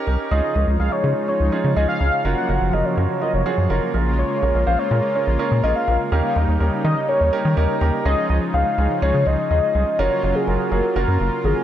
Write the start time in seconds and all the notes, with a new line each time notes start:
0.07 C2 C#4 D#4 G4 A#4
0.31 C#2 C#3 F3 G#3 C#4 D#4 F4 G#4 D#5
0.55 C#2 C#4 D#4 F4 A#4
0.67 C#2
0.80 C#2 C#4 D#4 F4 G#4 F5
0.92 C#5
1.04 C#3 C#4 D#4 F4 G#4
1.28 C#4 D#4 F4 G#4 C#5
1.40 C#2
1.52 C#4 D#4 F4 G#4
1.64 C#3
1.76 C#2 C#4 D#4 F4 G#4 D#5
1.89 F5
2.01 C#2 C#4 D#4 F4 G#4
2.25 F#1 F3 F#3 A#3 C#4 F4 F#4 A#4 F#5
2.37 F#5
2.49 F#1 C#4 F4 F#4 A#4
2.61 F#1
2.73 F#1 C#4 F4 F#4 A#4 D#5
2.85 C#5
2.97 F#2 C#4 F4 F#4 A#4
3.22 C#4 F4 F#4 A#4 D#5
3.34 F#1 C#5
3.46 C#4 F4 F#4 G#4
3.58 F#2
3.70 F#1 C#4 F4 F#4 A#4
3.94 A#1 G#3 C#4 F4 G#4 A#4
4.18 C#5
4.43 A#1 C#4 F4 G#4 A#4
4.55 A#1
4.67 A#1 C#4 F4 G#4 C5 F5
4.79 C#5
4.91 A#2 C#4 F4 G#4 A#4
5.15 C#4 F4 G#4 A#4 C#5
5.27 A#1
5.39 C#4 F4 G#4 A#4
5.51 A#2
5.63 A#1 C#4 F4 G#4 A#4 D#5
5.76 F5
5.88 A#1 C#4 F4 G#4 A#4
6.12 D#2 C#3 G3 C#4 D#4 G4 A#4 F5
6.36 D#2 C#4 D#4 G4 A#4
6.48 D#2
6.60 D#2 C#4 D#4 G4 A#4
6.84 D#3 C#4 D#4 G4 A#4 D#5
7.09 C#4 D#4 G4 A#4 C#5
7.21 D#2
7.33 C#4 D#4 G4 A#4
7.45 D#3
7.57 D#2 C#4 D#4 G4 A#4
7.81 D#2 C#4 D#4 G4 A#4
8.05 C#2 C#3 F3 G#3 C#4 D#4 F4 G#4 D#5
8.30 C#2 C#4 D#4 F4 G#4 D#5
8.54 C#2 C#4 D#4 F4 G#4 F5
8.78 C#2 C#4 D#4 F4 G#4
9.02 C#2 C#4 D#4 F4 G#4 C#5
9.14 C#3
9.26 C#2 C#4 D#4 F4 G#4 D#5
9.51 D#2 C#4 D#4 F4 G#4 D#5
9.75 C2 C#4 D#4 F4 G#4
9.99 F#1 F#3 A#3 C#4 F4 F#4 A#4 C#5
10.23 F#1 C#4 F4 F#4 A#4
10.35 G#4
10.47 F#1 C#4 F4 F#4 A#4
10.72 F#1 C#4 F4 F#4 G#4 A#4
10.96 F#1 C#4 F4 F#4 A#4
11.08 F#2
11.20 F#1 C#4 F4 F#4 A#4
11.44 G#1 C#4 F4 F#4 G#4 A#4